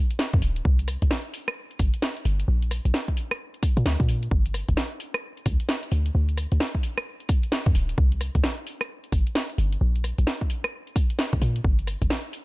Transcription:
0.11 closed hi-hat
0.19 snare
0.33 808-style bass F2, kick, closed hi-hat
0.42 808-style bass D1, open hi-hat
0.56 closed hi-hat
0.65 808-style bass C2, kick
0.79 closed hi-hat
0.88 cross-stick, open hi-hat
1.02 808-style bass C2, kick, closed hi-hat
1.11 snare
1.34 open hi-hat
1.48 cross-stick, closed hi-hat, claves
1.71 closed hi-hat
1.79 808-style bass G1, kick, open hi-hat
1.94 closed hi-hat
2.02 snare
2.17 closed hi-hat
2.25 808-style bass G1, open hi-hat
2.40 closed hi-hat
2.48 808-style bass A#1
2.62 closed hi-hat
2.71 cross-stick, open hi-hat
2.85 808-style bass A#1, closed hi-hat
2.94 snare
3.08 kick, closed hi-hat
3.17 open hi-hat
3.31 cross-stick, closed hi-hat, claves
3.54 closed hi-hat
3.63 kick, open hi-hat
3.77 808-style bass A#2, closed hi-hat
3.86 808-style bass D2, snare
4.00 808-style bass A#2, kick, closed hi-hat
4.09 open hi-hat
4.23 closed hi-hat
4.31 808-style bass G1, kick
4.46 closed hi-hat
4.54 cross-stick, open hi-hat
4.69 808-style bass G1, kick, closed hi-hat
4.77 snare
5.00 open hi-hat
5.14 cross-stick, closed hi-hat, claves
5.37 closed hi-hat
5.46 808-style bass D2, kick, open hi-hat
5.60 closed hi-hat
5.69 snare
5.83 closed hi-hat
5.92 808-style bass D2, open hi-hat
6.06 closed hi-hat
6.15 808-style bass D2
6.29 closed hi-hat
6.38 cross-stick, open hi-hat
6.52 808-style bass D2, closed hi-hat
6.60 snare
6.75 kick
6.83 open hi-hat
6.98 cross-stick, closed hi-hat, claves
7.20 closed hi-hat
7.29 kick, open hi-hat
7.43 closed hi-hat
7.52 snare
7.66 808-style bass F2, kick, closed hi-hat
7.75 808-style bass D1, open hi-hat
7.89 closed hi-hat
7.98 808-style bass C2, kick
8.12 closed hi-hat
8.21 cross-stick, open hi-hat
8.35 808-style bass C2, kick, closed hi-hat
8.44 snare
8.67 open hi-hat
8.81 cross-stick, closed hi-hat, claves
9.04 closed hi-hat
9.12 808-style bass G1, kick, open hi-hat
9.27 closed hi-hat
9.35 snare
9.50 closed hi-hat
9.58 808-style bass G1, open hi-hat
9.73 closed hi-hat
9.81 808-style bass A#1
9.96 closed hi-hat
10.04 cross-stick, open hi-hat
10.18 808-style bass A#1, closed hi-hat
10.27 snare
10.41 kick
10.50 open hi-hat
10.64 cross-stick, closed hi-hat, claves
10.87 closed hi-hat
10.96 kick, open hi-hat
11.10 closed hi-hat
11.19 snare
11.33 808-style bass D2, kick, closed hi-hat
11.42 808-style bass A#2, open hi-hat
11.56 closed hi-hat
11.64 808-style bass G1, kick
11.79 closed hi-hat
11.87 cross-stick, open hi-hat
12.02 808-style bass G1, kick, closed hi-hat
12.10 snare
12.33 open hi-hat

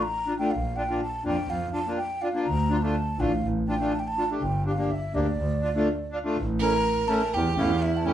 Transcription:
0.03 flute A#5
0.26 accordion D4 F4
0.39 accordion A3 D4 F4, flute G5
0.51 double bass A#1, flute F5
0.76 accordion D4 F4, flute G5
0.89 accordion A#3 D4 F4
1.02 flute A5
1.24 double bass F2, accordion A#3 D4 F4, flute G5
1.49 double bass F2, flute F5
1.73 accordion D4 F4, flute A5
1.87 accordion A#3 D4 F4
1.97 flute G5
2.22 accordion D4 F4, flute F5
2.34 accordion A#3 D4 F4
2.45 double bass D2, flute A#5
2.70 accordion D4 F4
2.76 flute A#5
2.82 accordion A3 D4 F4, flute A5
3.18 double bass A1, accordion A3 D4 F4, flute F5
3.44 double bass A1
3.68 accordion D4 F4, flute G5
3.79 accordion A3 D4 F4
3.92 flute A5
3.99 flute G5
4.08 flute A5
4.17 accordion D4 F4
4.30 accordion A3 D4 G4
4.41 double bass G1, flute G5
4.66 accordion D4 G4, flute F5
4.78 accordion A#3 D4 G4
4.91 flute E5
5.14 double bass D2, accordion A#3 D4 G4, flute D5
5.39 double bass D2
5.62 accordion D4 F4
5.75 accordion A3 D4 F4
6.12 accordion D4 F4
6.24 accordion A3 D4 F4
6.37 double bass A1
6.59 accordion A3 C#4 E4, violin A#4, flute A#5
7.07 accordion A3 C#4 E4, flute A5
7.34 double bass E2, violin G4, flute G5
7.57 double bass E2, accordion A3 C#4 E4, flute F5
7.82 violin E4, flute E5
7.97 flute A5
8.05 accordion A3 C#4 E4, violin G4, flute G5

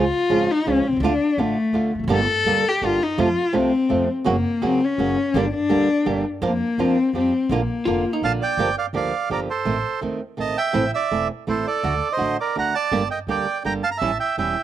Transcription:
Already playing: cello F4
0.29 upright bass G#1, nylon-string guitar C#3 F3 G#3 C#4 F4
0.51 cello D#4
0.66 upright bass C#2, nylon-string guitar C#3 F3 G#3 C#4 F4, cello C#4
0.87 upright bass B1, cello C4
0.93 upright bass C2 C#2
1.00 upright bass D2, nylon-string guitar D3 A3 D4
1.04 cello D4, nylon-string guitar F4
1.37 upright bass A1, nylon-string guitar D3 A3 D4 F4, cello A3
1.73 upright bass D2, nylon-string guitar D3 A3 D4 F4
1.95 upright bass E1
1.99 upright bass F1
2.04 upright bass F#1 G1
2.09 nylon-string guitar D3 G3 A#3 D4 G4
2.13 cello A4
2.44 upright bass D2, nylon-string guitar D3 G3 A#3 D4 G4
2.68 cello G4
2.82 upright bass G1, nylon-string guitar D3 G3 A#3 D4 G4, cello F4
3.03 cello D#4
3.18 upright bass F2, nylon-string guitar C3 F3 A3 C4 F4, cello F4
3.53 upright bass C2, nylon-string guitar C3 F3 A3 C4 F4, cello C4
3.89 upright bass F2, nylon-string guitar C3 F3 A3 C4 F4
4.24 upright bass F#1, nylon-string guitar C#3 F#3 A#3 C#4 F#4
4.30 cello A#3
4.62 upright bass C#2, nylon-string guitar C#3 F#3 A#3 C#4 F#4
4.66 cello C4
4.84 cello C#4
4.98 upright bass F#1, nylon-string guitar C#3 F#3 A#3 C#4 F#4
5.34 upright bass G1, nylon-string guitar D3 G3 A#3 D4 G4, cello D4
5.54 cello D4
5.69 upright bass D2, nylon-string guitar D3 G3 A#3 D4 G4
6.05 upright bass G1, nylon-string guitar D3 G3 A#3 D4 G4
6.42 upright bass F2, nylon-string guitar F3 A#3 D4 F4, cello A#3
6.78 upright bass F2, nylon-string guitar F3 A#3 D4 F4, cello C4
7.13 upright bass F2, nylon-string guitar F3 G3 C4 G4, cello C4
7.49 upright bass A#1, nylon-string guitar D3 A#3 D4 F4, cello A#3
7.87 upright bass F1, nylon-string guitar D3 A#3 D4 F4
8.13 hollow-body jazz guitar D#4
8.22 upright bass A#1, nylon-string guitar D3 A#3 D4 F4, bandoneon F5 A5
8.42 bandoneon D5 G5
8.57 upright bass G1, nylon-string guitar D3 F3 A#3 D4 G4
8.78 bandoneon D5 F5
8.93 upright bass D2, nylon-string guitar D3 F3 A#3 D4 G4, bandoneon D5 F5
9.30 upright bass G1, nylon-string guitar D3 F3 A#3 D4 G4, bandoneon A#4 D5
9.50 bandoneon A4 C5
9.65 upright bass A1, nylon-string guitar D#3 A3 C4
10.01 upright bass D#2, nylon-string guitar D#3 A3 C4
10.37 upright bass A1, nylon-string guitar D#3 A3 C4, bandoneon D#5 A5
10.57 bandoneon E5 G5
10.73 upright bass A1, nylon-string guitar E3 A3 C4 E4
10.94 bandoneon D5 E5
11.11 upright bass E1, nylon-string guitar E3 A3 C4 E4
11.47 upright bass A1, nylon-string guitar E3 A3 C4 E4, bandoneon A4 C5
11.67 bandoneon A4 D5
11.83 upright bass D2, nylon-string guitar D3 A3 D4 F#4
12.12 bandoneon C5 D#5
12.17 upright bass A1, nylon-string guitar D3 A3 D4 F#4
12.40 bandoneon A#4 D5
12.56 upright bass D2, nylon-string guitar D3 A3 D4 F#4, bandoneon F#5 A#5
12.75 bandoneon D5 A5
12.92 upright bass G1, nylon-string guitar D3 G3 A#3 D4 G4
13.11 bandoneon D#5 G5
13.27 upright bass D2, nylon-string guitar D3 G3 A#3 D4 G4, bandoneon D5 G5
13.64 upright bass G1, nylon-string guitar D3 G3 A#3 D4 G4, bandoneon G5 A#5
13.83 bandoneon F5 A5
13.91 bandoneon A#5
13.97 bandoneon E5 A5
14.01 upright bass A1, nylon-string guitar E3 G3 C#4 E4
14.20 bandoneon E5 G5
14.38 upright bass E1, nylon-string guitar E3 G3 C#4 E4, bandoneon E5 G5

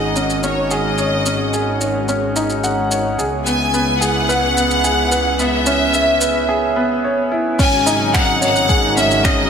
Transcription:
Already playing: double bass section G#1, analog synth pad D#3 G#3 C#4 F#4, felt piano C#4 D#4 G#4 C#5 F#5, violin section D#5
0.16 felt piano C#4, shaker
0.30 shaker
0.43 felt piano C#4, violin section C#5, shaker
0.71 felt piano G#4, violin section D#5, shaker
0.98 felt piano C#5, shaker
1.26 felt piano C#4, shaker
1.53 felt piano G#4, shaker
1.81 felt piano C#5, shaker
2.08 felt piano C#4, shaker
2.36 felt piano D#4, shaker
2.50 shaker
2.64 felt piano F#5, shaker
2.91 felt piano C#5, shaker
3.18 double bass section C#2, analog synth pad C#3 B3 E4, felt piano G#4, shaker
3.46 felt piano B3, violin section G#5, shaker
3.74 felt piano B3, shaker
4.01 felt piano G#4, violin section F#5, shaker
4.29 felt piano B4, shaker
4.57 felt piano B3, shaker
4.71 shaker
4.84 felt piano G#4, shaker
5.12 felt piano B4, shaker
5.39 felt piano B3, violin section E5, shaker
5.66 felt piano C#4, shaker
5.94 felt piano E5, shaker
6.21 felt piano B4, shaker
6.49 felt piano G#4
6.76 felt piano B3
7.04 felt piano C#5
7.32 felt piano E4
7.59 double bass section G#1, analog synth pad C#3 F#3 G#3 D#4, felt piano C#4, violin section G#5, kick, crash, shaker
7.86 felt piano D#4, shaker
8.14 felt piano F#5, violin section F#5, finger snap, kick, shaker
8.41 felt piano C#5, violin section F#5, shaker
8.56 shaker
8.69 felt piano G#4, kick, shaker
8.97 felt piano C#4, violin section E5, shaker
9.11 shaker
9.24 felt piano C#4, violin section D#5, finger snap, kick, shaker

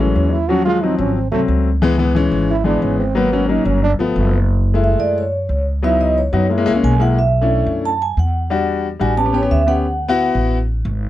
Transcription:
Already playing: upright bass A1
0.00 grand piano E3 F#3 G#3 C#4, trombone A3
0.16 upright bass D#2, trombone C#4
0.32 trombone E4
0.49 grand piano F3 F#3 C#4, trombone F#4
0.65 grand piano F3 F#3 G#3, trombone F4
0.82 grand piano F3 F#3 C4, trombone D#4
0.99 upright bass G#1, trombone C#4
1.15 trombone C4
1.31 upright bass C2, grand piano F#3 A3 C4, trombone A3
1.48 upright bass C#2
1.82 grand piano E3 G#3 B3
1.98 grand piano E3 G#3 B3
2.15 grand piano E3 G#3 C#4
2.32 upright bass G#1
2.51 trombone E4
2.64 grand piano E3 G#3 B3, trombone D4
2.82 upright bass G#1, trombone C#4
2.99 trombone C4
3.15 grand piano F#3 A#3 B3, trombone B3
3.32 grand piano F#3 A#3 C#4
3.49 grand piano F#3 A#3 C#4, trombone D#4
3.65 upright bass G1, trombone C#4
3.83 trombone D4
3.99 upright bass G1, grand piano F3 A3 B3
4.16 upright bass F#1
4.74 grand piano G#3 A3 E4
4.84 vibraphone E5
4.99 upright bass F#2, vibraphone D5
5.18 vibraphone C#5
5.49 upright bass C#2
5.83 grand piano F#3 B3 D#4 E4, vibraphone E5
6.01 vibraphone D#5
6.18 vibraphone C#5
6.33 upright bass F#2, grand piano F#3 B3 D#4 F#4
6.49 grand piano G#3 A#3 E4
6.58 grand piano G#3 A#3 E4
6.66 upright bass C#2, grand piano G#3 A#3 E4
6.74 grand piano G#3 A#3 C#4
6.83 upright bass B1, vibraphone G#5
6.99 grand piano G#3 A#3 E4, vibraphone F#5
7.19 vibraphone E5
7.41 grand piano A3 C#4 D4 E4
7.66 upright bass F#2
7.85 vibraphone A5
8.02 vibraphone G#5
8.17 upright bass E2, vibraphone F#5
8.50 grand piano G3 D4 F#4
8.99 upright bass A1, grand piano G3 D4 F#4, vibraphone G#5
9.17 grand piano B3 C#4 G4, vibraphone A5
9.25 grand piano B3 C#4 G4
9.33 grand piano B3 C#4 G4, vibraphone C#5
9.42 grand piano B3 C#4 G4
9.51 upright bass D2, vibraphone E5
9.66 grand piano B3 C#4 G4, vibraphone F#5
10.08 grand piano B3 E4 F#4
10.35 upright bass A1
10.85 upright bass G#1

